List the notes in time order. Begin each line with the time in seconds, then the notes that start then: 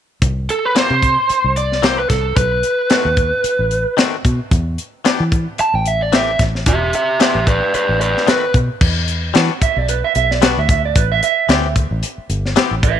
0.22 C2, kick, closed hi-hat
0.49 A4, closed hi-hat
0.65 B4
0.75 E3 A#3 C4 G4 C5, snare, closed hi-hat
0.90 C3
1.02 kick, closed hi-hat
1.29 muted fingered electric bass stroke, closed hi-hat
1.44 C2
1.56 D5, closed hi-hat
1.72 snare
1.83 E3 A#3 C4 G4 C5, snare, closed hi-hat
1.99 B4
2.10 C2 A4, kick, snare, closed hi-hat
2.36 B1 B4, kick, closed hi-hat
2.63 closed hi-hat
2.90 D#3 A3 C4 F#4, snare, closed hi-hat
3.05 D#2
3.17 kick, closed hi-hat
3.44 muted fingered electric bass stroke, closed hi-hat
3.59 A1
3.71 closed hi-hat
3.97 D#3 A3 C4 F#4, snare, closed hi-hat
4.25 B2, kick, closed hi-hat
4.51 E2, kick, closed hi-hat
4.78 closed hi-hat
5.05 E3 B3 D4 G4, snare, closed hi-hat
5.20 E3
5.32 kick, closed hi-hat
5.58 A5, muted fingered electric bass stroke, closed hi-hat
5.74 A1 G5
5.86 E5, closed hi-hat
6.02 D5
6.12 E3 A3 C4 G4 E5, snare, closed hi-hat
6.39 A1, kick, snare, closed hi-hat
6.55 snare
6.66 E1 G4 E5, kick, closed hi-hat
6.93 G4 E5, closed hi-hat
7.20 E3 B3 D4 G4 E5, snare, closed hi-hat
7.35 A1
7.47 B4 D5, kick, closed hi-hat
7.74 B4 D5, muted fingered electric bass stroke, closed hi-hat
7.89 A1
8.01 B4 D5, closed hi-hat
8.17 snare
8.27 D#3 A3 C4 F#4 B4, snare, closed hi-hat
8.54 B2, kick, closed hi-hat
8.81 E2, kick, crash
9.08 closed hi-hat
9.34 E3 G3 B3 D4 F#4, snare, closed hi-hat
9.61 E5, muted fingered electric bass stroke, kick, closed hi-hat
9.76 B1 D5
9.88 B4, closed hi-hat
10.04 E5
10.15 B1 E5, closed hi-hat
10.31 D5, snare
10.42 G3 B3 D4 F#4 B4, snare, closed hi-hat
10.57 D2 E5
10.69 E5, kick, closed hi-hat
10.85 D5
10.95 A1 B4, kick, closed hi-hat
11.12 E5
11.23 E5, closed hi-hat
11.49 D2 E3 B3 C4 G4, snare, closed hi-hat
11.76 kick, closed hi-hat
11.91 A1
12.03 closed hi-hat
12.18 muted fingered electric bass stroke
12.29 G1, closed hi-hat
12.46 snare
12.56 E3 B3 C4 G4, snare, closed hi-hat
12.71 A1
12.83 B4 E5, kick, closed hi-hat